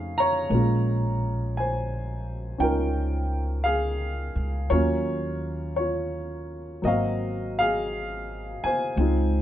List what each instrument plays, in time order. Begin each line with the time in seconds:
Already playing: upright bass F2, grand piano A3 C#4 D#4 G#4 C5 F5
0.18 grand piano C#5 A#5
0.49 upright bass A#1, grand piano G#3 A#3 C#4
0.54 grand piano F4
1.57 grand piano C5 G#5
2.58 upright bass C#2, grand piano C#4 D#4 F4 G5
2.63 grand piano A#4
3.64 grand piano G#4 F5
4.35 upright bass C#2
4.70 upright bass D#2, grand piano F#3 A#3 C#4 F4 C#5
5.76 grand piano F4 C#5
6.82 upright bass G#1, grand piano F#3 A#3 D#5
6.86 grand piano C4 F#4 F5
7.59 grand piano G#4 F5
8.64 grand piano C5 G#5, muted upright bass stroke
8.96 upright bass C#2, grand piano G#3 C4
9.00 grand piano D#4 F4